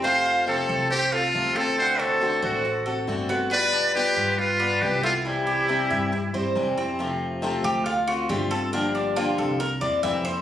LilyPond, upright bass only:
\new Staff \with { instrumentName = "Upright bass" } { \clef bass \time 4/4 \key f \major \tempo 4 = 138 f,4. c,4. d,4~ | d,4. a,,4. g,,4~ | g,,4. g,4. c,4~ | c,4. g,4 g,8 f,4~ |
f,4. d,4. g,,4~ | g,,4. c,4 e,8 f,4 | }